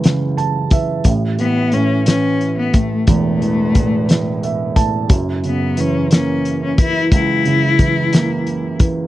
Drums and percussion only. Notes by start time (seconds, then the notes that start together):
0.04 snare, closed hi-hat
0.38 closed hi-hat
0.71 kick, closed hi-hat
1.04 kick, closed hi-hat
1.39 closed hi-hat
1.72 closed hi-hat
2.06 snare, closed hi-hat
2.41 closed hi-hat
2.74 kick, closed hi-hat
3.07 kick, closed hi-hat
3.42 closed hi-hat
3.75 kick, closed hi-hat
4.09 snare, closed hi-hat
4.43 closed hi-hat
4.76 kick, closed hi-hat
5.09 kick, closed hi-hat
5.44 closed hi-hat
5.77 closed hi-hat
6.11 snare, closed hi-hat
6.45 closed hi-hat
6.78 kick, closed hi-hat
7.12 kick, closed hi-hat
7.45 closed hi-hat
7.79 kick, closed hi-hat
8.13 snare, closed hi-hat
8.47 closed hi-hat
8.79 kick, closed hi-hat